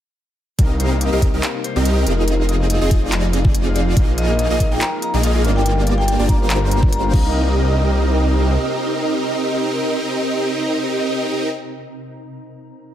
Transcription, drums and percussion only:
0.59 kick, closed hi-hat
0.80 closed hi-hat
1.01 closed hi-hat
1.22 kick, closed hi-hat
1.43 clap, closed hi-hat
1.64 closed hi-hat
1.85 closed hi-hat
2.07 closed hi-hat
2.28 closed hi-hat
2.49 closed hi-hat
2.70 closed hi-hat
2.91 kick, closed hi-hat
3.12 clap, closed hi-hat
3.33 closed hi-hat
3.45 kick
3.55 closed hi-hat
3.76 closed hi-hat
3.97 kick, closed hi-hat
4.18 closed hi-hat
4.39 closed hi-hat
4.60 kick, closed hi-hat
4.81 clap, closed hi-hat
5.02 closed hi-hat
5.23 closed hi-hat
5.45 closed hi-hat
5.66 closed hi-hat
5.87 closed hi-hat
6.08 closed hi-hat
6.29 kick, closed hi-hat
6.50 clap, closed hi-hat
6.71 closed hi-hat
6.83 kick
6.93 closed hi-hat
7.13 kick, crash

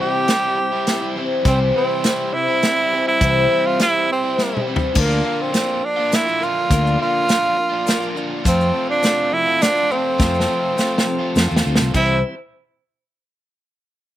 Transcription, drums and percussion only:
0.28 snare, closed hi-hat
0.87 snare, closed hi-hat
1.45 kick, closed hi-hat
2.04 snare, closed hi-hat
2.62 snare, closed hi-hat
3.21 kick, closed hi-hat
3.79 snare, closed hi-hat
4.38 snare
4.57 mid tom
4.76 floor tom
4.95 kick, crash, shaker
5.12 shaker
5.54 snare, closed hi-hat, shaker
6.12 snare, closed hi-hat, shaker
6.28 shaker
6.43 shaker
6.71 kick, closed hi-hat, shaker
6.87 shaker
7.29 snare, closed hi-hat, shaker
7.87 snare, closed hi-hat, shaker
8.02 shaker
8.17 shaker
8.45 kick, closed hi-hat, shaker
8.61 shaker
9.03 snare, closed hi-hat, shaker
9.62 snare, closed hi-hat, shaker
9.76 shaker
9.91 shaker
10.20 kick, snare, shaker
10.34 shaker
10.40 snare
10.78 snare, shaker
10.98 snare
11.07 shaker
11.36 snare, shaker
11.51 shaker
11.56 snare
11.65 shaker
11.75 snare
11.94 kick, crash, shaker

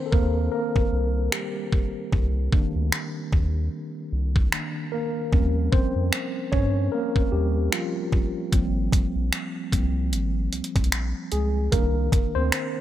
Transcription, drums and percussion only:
0.12 kick
0.76 kick
1.32 finger snap
1.72 kick
2.12 kick
2.52 kick
2.92 finger snap
3.33 kick
4.36 kick
4.52 finger snap
5.33 kick
5.73 kick
6.13 finger snap
6.53 kick
7.16 kick
7.72 finger snap
8.13 kick
8.53 kick, closed hi-hat
8.93 kick, closed hi-hat
9.33 finger snap, closed hi-hat
9.72 kick, closed hi-hat
10.13 closed hi-hat
10.53 closed hi-hat
10.64 closed hi-hat
10.76 kick, closed hi-hat
10.84 closed hi-hat
10.92 finger snap, closed hi-hat
11.32 closed hi-hat
11.72 kick, closed hi-hat
12.12 kick, closed hi-hat
12.52 finger snap, closed hi-hat

